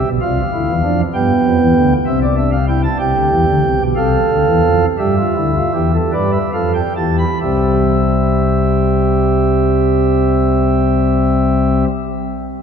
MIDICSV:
0, 0, Header, 1, 2, 480
1, 0, Start_track
1, 0, Key_signature, 0, "major"
1, 0, Tempo, 622407
1, 875, Time_signature, 6, 3, 24, 8
1, 2801, Tempo, 682594
1, 3761, Tempo, 745342
1, 4241, Tempo, 800000
1, 4721, Tempo, 874636
1, 5201, Tempo, 913242
1, 7938, End_track
2, 0, Start_track
2, 0, Title_t, "Pipe organ"
2, 0, Program_c, 0, 19
2, 46, Note_on_c, 0, 35, 87
2, 46, Note_on_c, 0, 47, 90
2, 147, Note_off_c, 0, 35, 0
2, 147, Note_off_c, 0, 47, 0
2, 163, Note_on_c, 0, 65, 79
2, 166, Note_on_c, 0, 36, 100
2, 166, Note_on_c, 0, 48, 99
2, 166, Note_on_c, 0, 77, 78
2, 311, Note_off_c, 0, 65, 0
2, 313, Note_off_c, 0, 36, 0
2, 313, Note_off_c, 0, 48, 0
2, 408, Note_on_c, 0, 50, 94
2, 410, Note_on_c, 0, 38, 94
2, 412, Note_on_c, 0, 64, 77
2, 507, Note_off_c, 0, 50, 0
2, 508, Note_off_c, 0, 38, 0
2, 529, Note_on_c, 0, 40, 95
2, 529, Note_on_c, 0, 52, 84
2, 555, Note_off_c, 0, 64, 0
2, 627, Note_off_c, 0, 40, 0
2, 627, Note_off_c, 0, 52, 0
2, 641, Note_on_c, 0, 62, 79
2, 642, Note_on_c, 0, 41, 106
2, 645, Note_on_c, 0, 53, 100
2, 778, Note_off_c, 0, 77, 0
2, 787, Note_off_c, 0, 62, 0
2, 788, Note_off_c, 0, 41, 0
2, 790, Note_off_c, 0, 53, 0
2, 876, Note_on_c, 0, 55, 99
2, 877, Note_on_c, 0, 59, 86
2, 878, Note_on_c, 0, 43, 108
2, 879, Note_on_c, 0, 79, 77
2, 1023, Note_off_c, 0, 55, 0
2, 1024, Note_off_c, 0, 43, 0
2, 1117, Note_on_c, 0, 53, 99
2, 1119, Note_on_c, 0, 41, 102
2, 1217, Note_off_c, 0, 53, 0
2, 1218, Note_off_c, 0, 41, 0
2, 1234, Note_on_c, 0, 40, 106
2, 1235, Note_on_c, 0, 52, 107
2, 1335, Note_off_c, 0, 40, 0
2, 1335, Note_off_c, 0, 52, 0
2, 1353, Note_on_c, 0, 50, 98
2, 1356, Note_on_c, 0, 38, 105
2, 1489, Note_off_c, 0, 59, 0
2, 1489, Note_off_c, 0, 79, 0
2, 1499, Note_off_c, 0, 50, 0
2, 1501, Note_off_c, 0, 38, 0
2, 1588, Note_on_c, 0, 48, 97
2, 1590, Note_on_c, 0, 60, 83
2, 1590, Note_on_c, 0, 76, 91
2, 1594, Note_on_c, 0, 36, 94
2, 1691, Note_off_c, 0, 76, 0
2, 1711, Note_on_c, 0, 74, 86
2, 1736, Note_off_c, 0, 60, 0
2, 1811, Note_off_c, 0, 74, 0
2, 1826, Note_on_c, 0, 62, 88
2, 1830, Note_on_c, 0, 76, 88
2, 1930, Note_off_c, 0, 76, 0
2, 1945, Note_on_c, 0, 77, 77
2, 1975, Note_off_c, 0, 62, 0
2, 2048, Note_off_c, 0, 77, 0
2, 2066, Note_on_c, 0, 79, 97
2, 2068, Note_on_c, 0, 64, 97
2, 2170, Note_off_c, 0, 79, 0
2, 2186, Note_on_c, 0, 81, 85
2, 2207, Note_off_c, 0, 48, 0
2, 2211, Note_off_c, 0, 36, 0
2, 2218, Note_off_c, 0, 64, 0
2, 2291, Note_off_c, 0, 81, 0
2, 2302, Note_on_c, 0, 67, 100
2, 2305, Note_on_c, 0, 36, 107
2, 2306, Note_on_c, 0, 48, 108
2, 2308, Note_on_c, 0, 79, 89
2, 2411, Note_off_c, 0, 36, 0
2, 2412, Note_off_c, 0, 48, 0
2, 2428, Note_on_c, 0, 38, 108
2, 2432, Note_on_c, 0, 50, 96
2, 2534, Note_off_c, 0, 38, 0
2, 2537, Note_off_c, 0, 50, 0
2, 2547, Note_on_c, 0, 40, 97
2, 2551, Note_on_c, 0, 52, 91
2, 2656, Note_off_c, 0, 40, 0
2, 2658, Note_off_c, 0, 52, 0
2, 2673, Note_on_c, 0, 38, 108
2, 2679, Note_on_c, 0, 50, 117
2, 2782, Note_off_c, 0, 38, 0
2, 2785, Note_off_c, 0, 50, 0
2, 2796, Note_on_c, 0, 48, 105
2, 2797, Note_on_c, 0, 36, 107
2, 2897, Note_off_c, 0, 48, 0
2, 2898, Note_off_c, 0, 36, 0
2, 2913, Note_on_c, 0, 35, 95
2, 2916, Note_on_c, 0, 47, 105
2, 2934, Note_off_c, 0, 67, 0
2, 2938, Note_off_c, 0, 79, 0
2, 3015, Note_off_c, 0, 35, 0
2, 3016, Note_off_c, 0, 47, 0
2, 3031, Note_on_c, 0, 36, 96
2, 3031, Note_on_c, 0, 48, 102
2, 3031, Note_on_c, 0, 69, 92
2, 3033, Note_on_c, 0, 77, 98
2, 3178, Note_off_c, 0, 36, 0
2, 3178, Note_off_c, 0, 48, 0
2, 3270, Note_on_c, 0, 50, 105
2, 3272, Note_on_c, 0, 38, 114
2, 3373, Note_off_c, 0, 50, 0
2, 3374, Note_off_c, 0, 38, 0
2, 3385, Note_on_c, 0, 52, 92
2, 3388, Note_on_c, 0, 40, 99
2, 3492, Note_off_c, 0, 52, 0
2, 3493, Note_off_c, 0, 40, 0
2, 3499, Note_on_c, 0, 53, 115
2, 3502, Note_on_c, 0, 41, 106
2, 3658, Note_off_c, 0, 53, 0
2, 3658, Note_off_c, 0, 69, 0
2, 3659, Note_off_c, 0, 77, 0
2, 3660, Note_off_c, 0, 41, 0
2, 3751, Note_on_c, 0, 67, 94
2, 3751, Note_on_c, 0, 76, 93
2, 3753, Note_on_c, 0, 43, 99
2, 3754, Note_on_c, 0, 55, 99
2, 3857, Note_off_c, 0, 67, 0
2, 3881, Note_on_c, 0, 65, 95
2, 3903, Note_off_c, 0, 43, 0
2, 3903, Note_off_c, 0, 55, 0
2, 3982, Note_off_c, 0, 65, 0
2, 3996, Note_on_c, 0, 38, 74
2, 3996, Note_on_c, 0, 50, 88
2, 3996, Note_on_c, 0, 64, 83
2, 4101, Note_off_c, 0, 64, 0
2, 4121, Note_on_c, 0, 65, 94
2, 4147, Note_off_c, 0, 38, 0
2, 4148, Note_off_c, 0, 50, 0
2, 4225, Note_off_c, 0, 65, 0
2, 4238, Note_on_c, 0, 40, 96
2, 4238, Note_on_c, 0, 52, 90
2, 4238, Note_on_c, 0, 67, 90
2, 4339, Note_off_c, 0, 67, 0
2, 4357, Note_on_c, 0, 69, 79
2, 4376, Note_off_c, 0, 76, 0
2, 4385, Note_off_c, 0, 40, 0
2, 4385, Note_off_c, 0, 52, 0
2, 4459, Note_off_c, 0, 69, 0
2, 4469, Note_on_c, 0, 71, 84
2, 4470, Note_on_c, 0, 43, 87
2, 4470, Note_on_c, 0, 55, 88
2, 4470, Note_on_c, 0, 74, 85
2, 4577, Note_off_c, 0, 74, 0
2, 4587, Note_on_c, 0, 76, 90
2, 4623, Note_off_c, 0, 71, 0
2, 4624, Note_off_c, 0, 43, 0
2, 4624, Note_off_c, 0, 55, 0
2, 4698, Note_off_c, 0, 76, 0
2, 4714, Note_on_c, 0, 41, 85
2, 4714, Note_on_c, 0, 53, 85
2, 4714, Note_on_c, 0, 69, 86
2, 4716, Note_on_c, 0, 77, 83
2, 4818, Note_off_c, 0, 77, 0
2, 4829, Note_on_c, 0, 79, 78
2, 4862, Note_off_c, 0, 41, 0
2, 4862, Note_off_c, 0, 53, 0
2, 4862, Note_off_c, 0, 69, 0
2, 4935, Note_off_c, 0, 79, 0
2, 4950, Note_on_c, 0, 67, 84
2, 4951, Note_on_c, 0, 52, 81
2, 4952, Note_on_c, 0, 40, 77
2, 4952, Note_on_c, 0, 81, 80
2, 5058, Note_off_c, 0, 81, 0
2, 5073, Note_on_c, 0, 83, 76
2, 5104, Note_off_c, 0, 67, 0
2, 5105, Note_off_c, 0, 40, 0
2, 5105, Note_off_c, 0, 52, 0
2, 5182, Note_off_c, 0, 83, 0
2, 5195, Note_on_c, 0, 36, 74
2, 5196, Note_on_c, 0, 48, 81
2, 5196, Note_on_c, 0, 76, 79
2, 5198, Note_on_c, 0, 67, 78
2, 5213, Note_on_c, 0, 55, 73
2, 5213, Note_on_c, 0, 60, 67
2, 7528, Note_off_c, 0, 36, 0
2, 7529, Note_off_c, 0, 48, 0
2, 7529, Note_off_c, 0, 76, 0
2, 7531, Note_off_c, 0, 67, 0
2, 7545, Note_off_c, 0, 55, 0
2, 7545, Note_off_c, 0, 60, 0
2, 7938, End_track
0, 0, End_of_file